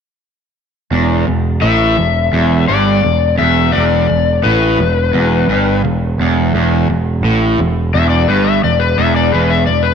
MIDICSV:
0, 0, Header, 1, 4, 480
1, 0, Start_track
1, 0, Key_signature, 1, "minor"
1, 0, Tempo, 702576
1, 626, Time_signature, 4, 2, 24, 8
1, 6791, End_track
2, 0, Start_track
2, 0, Title_t, "Electric slide guitar"
2, 0, Program_c, 0, 29
2, 1105, Note_on_c, 0, 76, 69
2, 1807, Note_off_c, 0, 76, 0
2, 1832, Note_on_c, 0, 74, 76
2, 2298, Note_off_c, 0, 74, 0
2, 2313, Note_on_c, 0, 76, 78
2, 2543, Note_on_c, 0, 74, 75
2, 2545, Note_off_c, 0, 76, 0
2, 3013, Note_off_c, 0, 74, 0
2, 3029, Note_on_c, 0, 71, 83
2, 3963, Note_off_c, 0, 71, 0
2, 5427, Note_on_c, 0, 76, 96
2, 5531, Note_off_c, 0, 76, 0
2, 5533, Note_on_c, 0, 74, 85
2, 5657, Note_on_c, 0, 71, 83
2, 5658, Note_off_c, 0, 74, 0
2, 5766, Note_on_c, 0, 76, 73
2, 5779, Note_off_c, 0, 71, 0
2, 5894, Note_off_c, 0, 76, 0
2, 5904, Note_on_c, 0, 74, 76
2, 6010, Note_on_c, 0, 71, 90
2, 6022, Note_off_c, 0, 74, 0
2, 6134, Note_on_c, 0, 76, 84
2, 6135, Note_off_c, 0, 71, 0
2, 6257, Note_off_c, 0, 76, 0
2, 6259, Note_on_c, 0, 74, 87
2, 6367, Note_on_c, 0, 71, 80
2, 6380, Note_off_c, 0, 74, 0
2, 6490, Note_on_c, 0, 76, 69
2, 6493, Note_off_c, 0, 71, 0
2, 6600, Note_off_c, 0, 76, 0
2, 6603, Note_on_c, 0, 74, 76
2, 6714, Note_on_c, 0, 71, 77
2, 6731, Note_off_c, 0, 74, 0
2, 6791, Note_off_c, 0, 71, 0
2, 6791, End_track
3, 0, Start_track
3, 0, Title_t, "Overdriven electric guitar"
3, 0, Program_c, 1, 29
3, 630, Note_on_c, 1, 40, 85
3, 862, Note_off_c, 1, 40, 0
3, 873, Note_on_c, 1, 40, 72
3, 1063, Note_off_c, 1, 40, 0
3, 1108, Note_on_c, 1, 45, 90
3, 1341, Note_off_c, 1, 45, 0
3, 1351, Note_on_c, 1, 40, 69
3, 1543, Note_off_c, 1, 40, 0
3, 1593, Note_on_c, 1, 40, 94
3, 1824, Note_off_c, 1, 40, 0
3, 1834, Note_on_c, 1, 43, 98
3, 2066, Note_off_c, 1, 43, 0
3, 2073, Note_on_c, 1, 40, 70
3, 2264, Note_off_c, 1, 40, 0
3, 2309, Note_on_c, 1, 40, 87
3, 2541, Note_off_c, 1, 40, 0
3, 2549, Note_on_c, 1, 40, 96
3, 2783, Note_off_c, 1, 40, 0
3, 2800, Note_on_c, 1, 40, 66
3, 2988, Note_off_c, 1, 40, 0
3, 3030, Note_on_c, 1, 45, 96
3, 3264, Note_off_c, 1, 45, 0
3, 3284, Note_on_c, 1, 40, 64
3, 3470, Note_off_c, 1, 40, 0
3, 3515, Note_on_c, 1, 40, 93
3, 3746, Note_off_c, 1, 40, 0
3, 3752, Note_on_c, 1, 43, 100
3, 3985, Note_off_c, 1, 43, 0
3, 3993, Note_on_c, 1, 40, 67
3, 4185, Note_off_c, 1, 40, 0
3, 4242, Note_on_c, 1, 40, 88
3, 4464, Note_off_c, 1, 40, 0
3, 4473, Note_on_c, 1, 40, 99
3, 4705, Note_off_c, 1, 40, 0
3, 4713, Note_on_c, 1, 40, 69
3, 4904, Note_off_c, 1, 40, 0
3, 4950, Note_on_c, 1, 45, 87
3, 5183, Note_off_c, 1, 45, 0
3, 5188, Note_on_c, 1, 40, 67
3, 5381, Note_off_c, 1, 40, 0
3, 5433, Note_on_c, 1, 40, 88
3, 5661, Note_off_c, 1, 40, 0
3, 5664, Note_on_c, 1, 43, 93
3, 5899, Note_off_c, 1, 43, 0
3, 5904, Note_on_c, 1, 40, 69
3, 6098, Note_off_c, 1, 40, 0
3, 6140, Note_on_c, 1, 40, 88
3, 6373, Note_off_c, 1, 40, 0
3, 6381, Note_on_c, 1, 40, 84
3, 6610, Note_off_c, 1, 40, 0
3, 6618, Note_on_c, 1, 40, 72
3, 6791, Note_off_c, 1, 40, 0
3, 6791, End_track
4, 0, Start_track
4, 0, Title_t, "Picked electric bass"
4, 0, Program_c, 2, 34
4, 621, Note_on_c, 2, 28, 86
4, 848, Note_off_c, 2, 28, 0
4, 873, Note_on_c, 2, 28, 64
4, 1094, Note_off_c, 2, 28, 0
4, 1112, Note_on_c, 2, 33, 84
4, 1334, Note_off_c, 2, 33, 0
4, 1355, Note_on_c, 2, 28, 74
4, 1576, Note_off_c, 2, 28, 0
4, 1588, Note_on_c, 2, 28, 80
4, 1812, Note_off_c, 2, 28, 0
4, 1838, Note_on_c, 2, 31, 84
4, 2058, Note_off_c, 2, 31, 0
4, 2080, Note_on_c, 2, 28, 72
4, 2299, Note_off_c, 2, 28, 0
4, 2328, Note_on_c, 2, 28, 76
4, 2544, Note_off_c, 2, 28, 0
4, 2570, Note_on_c, 2, 28, 83
4, 2785, Note_off_c, 2, 28, 0
4, 2797, Note_on_c, 2, 28, 62
4, 3018, Note_off_c, 2, 28, 0
4, 3040, Note_on_c, 2, 33, 84
4, 3260, Note_off_c, 2, 33, 0
4, 3268, Note_on_c, 2, 28, 77
4, 3493, Note_off_c, 2, 28, 0
4, 3508, Note_on_c, 2, 28, 89
4, 3733, Note_off_c, 2, 28, 0
4, 3741, Note_on_c, 2, 31, 81
4, 3969, Note_off_c, 2, 31, 0
4, 3987, Note_on_c, 2, 28, 70
4, 4213, Note_off_c, 2, 28, 0
4, 4222, Note_on_c, 2, 28, 92
4, 4450, Note_off_c, 2, 28, 0
4, 4464, Note_on_c, 2, 28, 98
4, 4690, Note_off_c, 2, 28, 0
4, 4699, Note_on_c, 2, 28, 67
4, 4926, Note_off_c, 2, 28, 0
4, 4930, Note_on_c, 2, 33, 86
4, 5163, Note_off_c, 2, 33, 0
4, 5183, Note_on_c, 2, 28, 75
4, 5410, Note_off_c, 2, 28, 0
4, 5422, Note_on_c, 2, 28, 93
4, 5648, Note_off_c, 2, 28, 0
4, 5659, Note_on_c, 2, 31, 91
4, 5887, Note_off_c, 2, 31, 0
4, 5900, Note_on_c, 2, 28, 70
4, 6127, Note_off_c, 2, 28, 0
4, 6135, Note_on_c, 2, 28, 80
4, 6364, Note_off_c, 2, 28, 0
4, 6380, Note_on_c, 2, 28, 89
4, 6606, Note_off_c, 2, 28, 0
4, 6619, Note_on_c, 2, 28, 66
4, 6791, Note_off_c, 2, 28, 0
4, 6791, End_track
0, 0, End_of_file